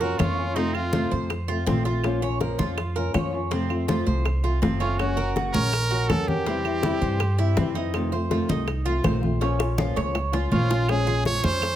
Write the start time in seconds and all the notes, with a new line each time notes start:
Already playing: F2
0.00 A#3 C#4 F4 F#4 A#4, high conga
0.18 F2 F3 A#3 C#4 F4 C#5, high bongo, low bongo, high conga, claves
0.37 A#3 C#4 F4
0.55 C3 F3 A3 C4 D#4 F4, high bongo, high conga
0.74 A3 C4 F4, high bongo, high conga, claves
0.93 C3 F3 A3 C4 F4, high bongo, high conga
1.11 F2 C5, high conga
1.30 muted nylon-string guitar stroke, high bongo, high conga, claves
1.48 A3 C4 F4, high bongo, high conga
1.66 A#1 C3 F3 A3 C4 F4, high bongo, low bongo, high conga
1.85 A3 C4 F4, high bongo, high conga
2.04 F3 A#3 C#4 F4, high bongo, high conga, claves
2.22 A#3 C#4 F4 C#5, high conga
2.40 F3 A#3 C#4 F4 A#4, high bongo, high conga
2.59 F2 F4, high conga
2.78 muted nylon-string guitar stroke, high bongo, high conga, claves
2.96 A#3 C#4 F4 A#4, high conga
3.14 F2 F3 A#3 C#4 F4 C#5, high bongo, low bongo, high conga, claves
3.33 A#3 C#4 F4
3.51 C3 F3 A3 C4 F4, high bongo, high conga
3.70 A3 C4 F4, high bongo, high conga, claves
3.88 C3 F3 A3 C4 F4, high bongo, high conga
4.07 C2 C5, high conga
4.25 muted nylon-string guitar stroke, high bongo, high conga, claves
4.44 A3 C4 F4, high bongo, high conga
4.62 F#1 C3 F3 A3 C4 F4, high bongo, low bongo, high conga
4.80 A3 C4 C#4 F4, high bongo, high conga
4.98 C#3 F#3 A#3 C#4 F#4, high bongo, high conga, claves
5.17 A#3 C#4 F#4 A#4, high conga
5.36 C#3 F#3 A#3 C#4 F#4, high bongo, high conga
5.53 A#1 C#4 A#4, high conga
5.73 muted nylon-string guitar stroke, high bongo, high conga, claves
5.91 A#3 C#4 F#4, high conga
6.09 E2 C#3 F#3 A#3 C#4 F#4 A4 A#4, high bongo, low bongo, high conga, claves
6.28 A#3 C#4 F#4 G4, high conga
6.46 C3 E3 G3 C4 E4, high bongo, high conga
6.65 G3 C4 E4, high bongo, high conga, claves
6.83 C3 E3 G3 C4 E4, high bongo, high conga
7.01 G2 C5, high conga
7.20 muted nylon-string guitar stroke, high bongo, high conga, claves
7.38 G3 C4 E4, high bongo, high conga
7.57 F2 C3 E3 G3 C4 E4, high bongo, low bongo, high conga
7.75 G3 C4 D#4 E4, high bongo, high conga
7.93 C3 D#3 A3 C4 F4, high bongo, high conga, claves
8.12 A3 C4 F4 C5, high conga
8.31 C3 D#3 A3 C4 F4, high bongo, high conga
8.49 C2 D#4, high conga
8.68 muted nylon-string guitar stroke, high bongo, high conga, claves
8.85 A3 C4 F4, high conga
9.04 A#1 C3 D#3 A3 C4 F4 C5, high bongo, low bongo, high conga, claves
9.22 A3 C4 F4, high conga
9.41 F3 A#3 C#4 F4, high bongo, high conga
9.59 A#3 C#4 F4, high bongo, high conga, claves
9.78 F3 A#3 C#4 F4, high bongo, high conga
9.96 C#2 C#5, high bongo, high conga
10.15 muted nylon-string guitar stroke, low bongo, high conga, claves
10.32 A#3 C#4 F4, low bongo, high conga
10.51 A#1 F3 A#3 C#4 F4, high conga
10.70 A#3 C#4 F4, low bongo, high conga
10.88 F3 G#3 C#4 F4 G#4, high bongo, high conga, claves
11.07 G#3 C#4 F4 G#4, high conga
11.25 F3 G#3 C#4 F4 C#5, high bongo, high conga
11.43 F2 C#4 C5, high conga
11.62 muted nylon-string guitar stroke, high bongo, high conga, claves